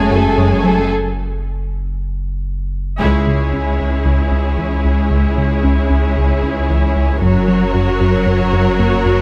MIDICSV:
0, 0, Header, 1, 10, 480
1, 0, Start_track
1, 0, Key_signature, 4, "minor"
1, 0, Tempo, 526316
1, 825, Time_signature, 4, 2, 24, 8
1, 8405, End_track
2, 0, Start_track
2, 0, Title_t, "Violin section"
2, 0, Program_c, 0, 48
2, 0, Note_on_c, 0, 80, 73
2, 804, Note_off_c, 0, 80, 0
2, 8405, End_track
3, 0, Start_track
3, 0, Title_t, "Violin section"
3, 0, Program_c, 1, 48
3, 0, Note_on_c, 1, 69, 49
3, 0, Note_on_c, 1, 73, 47
3, 93, Note_off_c, 1, 69, 0
3, 95, Note_off_c, 1, 73, 0
3, 117, Note_on_c, 1, 68, 42
3, 118, Note_on_c, 1, 69, 42
3, 342, Note_off_c, 1, 69, 0
3, 349, Note_on_c, 1, 73, 38
3, 351, Note_off_c, 1, 68, 0
3, 353, Note_on_c, 1, 69, 38
3, 575, Note_off_c, 1, 69, 0
3, 586, Note_on_c, 1, 69, 37
3, 587, Note_off_c, 1, 73, 0
3, 588, Note_on_c, 1, 68, 41
3, 826, Note_off_c, 1, 69, 0
3, 827, Note_off_c, 1, 68, 0
3, 2731, Note_on_c, 1, 73, 40
3, 2732, Note_on_c, 1, 68, 39
3, 6542, Note_off_c, 1, 68, 0
3, 6542, Note_off_c, 1, 73, 0
3, 6578, Note_on_c, 1, 73, 48
3, 6580, Note_on_c, 1, 70, 46
3, 8405, Note_off_c, 1, 70, 0
3, 8405, Note_off_c, 1, 73, 0
3, 8405, End_track
4, 0, Start_track
4, 0, Title_t, "Viola section"
4, 0, Program_c, 2, 48
4, 112, Note_on_c, 2, 57, 45
4, 113, Note_on_c, 2, 69, 46
4, 340, Note_on_c, 2, 68, 42
4, 342, Note_on_c, 2, 56, 40
4, 349, Note_off_c, 2, 57, 0
4, 349, Note_off_c, 2, 69, 0
4, 581, Note_on_c, 2, 57, 40
4, 581, Note_on_c, 2, 69, 39
4, 583, Note_off_c, 2, 68, 0
4, 584, Note_off_c, 2, 56, 0
4, 823, Note_off_c, 2, 57, 0
4, 824, Note_off_c, 2, 69, 0
4, 2729, Note_on_c, 2, 56, 40
4, 2731, Note_on_c, 2, 64, 40
4, 6541, Note_off_c, 2, 56, 0
4, 6542, Note_off_c, 2, 64, 0
4, 6576, Note_on_c, 2, 66, 49
4, 6579, Note_on_c, 2, 54, 46
4, 8405, Note_off_c, 2, 54, 0
4, 8405, Note_off_c, 2, 66, 0
4, 8405, End_track
5, 0, Start_track
5, 0, Title_t, "Synth pluck"
5, 0, Program_c, 3, 84
5, 100, Note_on_c, 3, 66, 56
5, 245, Note_off_c, 3, 66, 0
5, 342, Note_on_c, 3, 54, 83
5, 487, Note_off_c, 3, 54, 0
5, 589, Note_on_c, 3, 61, 51
5, 732, Note_off_c, 3, 61, 0
5, 2738, Note_on_c, 3, 49, 63
5, 2884, Note_off_c, 3, 49, 0
5, 2982, Note_on_c, 3, 56, 38
5, 3127, Note_off_c, 3, 56, 0
5, 3217, Note_on_c, 3, 61, 50
5, 3363, Note_off_c, 3, 61, 0
5, 3463, Note_on_c, 3, 61, 48
5, 3608, Note_off_c, 3, 61, 0
5, 3698, Note_on_c, 3, 49, 65
5, 3844, Note_off_c, 3, 49, 0
5, 3936, Note_on_c, 3, 61, 47
5, 4083, Note_off_c, 3, 61, 0
5, 4172, Note_on_c, 3, 52, 47
5, 4320, Note_off_c, 3, 52, 0
5, 4652, Note_on_c, 3, 49, 62
5, 4800, Note_off_c, 3, 49, 0
5, 4894, Note_on_c, 3, 56, 39
5, 5042, Note_off_c, 3, 56, 0
5, 5138, Note_on_c, 3, 61, 53
5, 5284, Note_off_c, 3, 61, 0
5, 5379, Note_on_c, 3, 61, 45
5, 5525, Note_off_c, 3, 61, 0
5, 5622, Note_on_c, 3, 49, 73
5, 5767, Note_off_c, 3, 49, 0
5, 5866, Note_on_c, 3, 61, 48
5, 6010, Note_off_c, 3, 61, 0
5, 6107, Note_on_c, 3, 52, 58
5, 6250, Note_off_c, 3, 52, 0
5, 6582, Note_on_c, 3, 54, 70
5, 6727, Note_off_c, 3, 54, 0
5, 6823, Note_on_c, 3, 61, 42
5, 6968, Note_off_c, 3, 61, 0
5, 7063, Note_on_c, 3, 66, 52
5, 7208, Note_off_c, 3, 66, 0
5, 7300, Note_on_c, 3, 66, 48
5, 7446, Note_off_c, 3, 66, 0
5, 7537, Note_on_c, 3, 54, 75
5, 7683, Note_off_c, 3, 54, 0
5, 7781, Note_on_c, 3, 66, 48
5, 7927, Note_off_c, 3, 66, 0
5, 8017, Note_on_c, 3, 58, 55
5, 8163, Note_off_c, 3, 58, 0
5, 8405, End_track
6, 0, Start_track
6, 0, Title_t, "French horn section"
6, 0, Program_c, 4, 60
6, 0, Note_on_c, 4, 56, 65
6, 0, Note_on_c, 4, 57, 69
6, 790, Note_off_c, 4, 57, 0
6, 791, Note_off_c, 4, 56, 0
6, 8405, End_track
7, 0, Start_track
7, 0, Title_t, "Cello section"
7, 0, Program_c, 5, 48
7, 0, Note_on_c, 5, 42, 65
7, 790, Note_off_c, 5, 42, 0
7, 2737, Note_on_c, 5, 37, 54
7, 6545, Note_off_c, 5, 37, 0
7, 6583, Note_on_c, 5, 42, 55
7, 8405, Note_off_c, 5, 42, 0
7, 8405, End_track
8, 0, Start_track
8, 0, Title_t, "Analog synth bass"
8, 0, Program_c, 6, 38
8, 107, Note_on_c, 6, 42, 50
8, 250, Note_off_c, 6, 42, 0
8, 347, Note_on_c, 6, 42, 78
8, 491, Note_off_c, 6, 42, 0
8, 581, Note_on_c, 6, 54, 58
8, 726, Note_off_c, 6, 54, 0
8, 2741, Note_on_c, 6, 37, 92
8, 2887, Note_off_c, 6, 37, 0
8, 2984, Note_on_c, 6, 49, 45
8, 3128, Note_off_c, 6, 49, 0
8, 3227, Note_on_c, 6, 37, 41
8, 3370, Note_off_c, 6, 37, 0
8, 3466, Note_on_c, 6, 37, 47
8, 3610, Note_off_c, 6, 37, 0
8, 3695, Note_on_c, 6, 37, 67
8, 3842, Note_off_c, 6, 37, 0
8, 3936, Note_on_c, 6, 37, 46
8, 4083, Note_off_c, 6, 37, 0
8, 4177, Note_on_c, 6, 37, 46
8, 4324, Note_off_c, 6, 37, 0
8, 4422, Note_on_c, 6, 37, 45
8, 4567, Note_off_c, 6, 37, 0
8, 4657, Note_on_c, 6, 37, 67
8, 4803, Note_off_c, 6, 37, 0
8, 4903, Note_on_c, 6, 49, 50
8, 5048, Note_off_c, 6, 49, 0
8, 5147, Note_on_c, 6, 37, 48
8, 5290, Note_off_c, 6, 37, 0
8, 5385, Note_on_c, 6, 37, 46
8, 5529, Note_off_c, 6, 37, 0
8, 5633, Note_on_c, 6, 37, 70
8, 5775, Note_off_c, 6, 37, 0
8, 5865, Note_on_c, 6, 37, 52
8, 6010, Note_off_c, 6, 37, 0
8, 6108, Note_on_c, 6, 37, 54
8, 6251, Note_off_c, 6, 37, 0
8, 6345, Note_on_c, 6, 37, 50
8, 6489, Note_off_c, 6, 37, 0
8, 6582, Note_on_c, 6, 42, 69
8, 6727, Note_off_c, 6, 42, 0
8, 6821, Note_on_c, 6, 54, 53
8, 6967, Note_off_c, 6, 54, 0
8, 7064, Note_on_c, 6, 42, 50
8, 7209, Note_off_c, 6, 42, 0
8, 7305, Note_on_c, 6, 42, 52
8, 7449, Note_off_c, 6, 42, 0
8, 7538, Note_on_c, 6, 42, 70
8, 7685, Note_off_c, 6, 42, 0
8, 7780, Note_on_c, 6, 42, 49
8, 7926, Note_off_c, 6, 42, 0
8, 8021, Note_on_c, 6, 42, 50
8, 8167, Note_off_c, 6, 42, 0
8, 8259, Note_on_c, 6, 42, 53
8, 8405, Note_off_c, 6, 42, 0
8, 8405, End_track
9, 0, Start_track
9, 0, Title_t, "Double bass section"
9, 0, Program_c, 7, 48
9, 2739, Note_on_c, 7, 37, 48
9, 3188, Note_off_c, 7, 37, 0
9, 6579, Note_on_c, 7, 30, 45
9, 7029, Note_off_c, 7, 30, 0
9, 8405, End_track
10, 0, Start_track
10, 0, Title_t, "Sub bass"
10, 0, Program_c, 8, 38
10, 0, Note_on_c, 8, 30, 63
10, 2730, Note_off_c, 8, 30, 0
10, 2736, Note_on_c, 8, 37, 51
10, 6582, Note_on_c, 8, 30, 55
10, 6595, Note_off_c, 8, 37, 0
10, 8405, Note_off_c, 8, 30, 0
10, 8405, End_track
0, 0, End_of_file